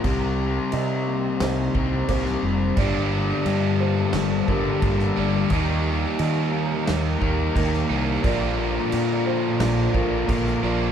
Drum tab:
CC |x---x---x---x---|x---x---x---x---|x---x---x---x---|x---x---x---x---|
SD |--------o----o--|--------o----o--|--------o----o--|--------o----o--|
BD |o---------o-o---|o---------o-o---|o---------o-o---|o---------o-o---|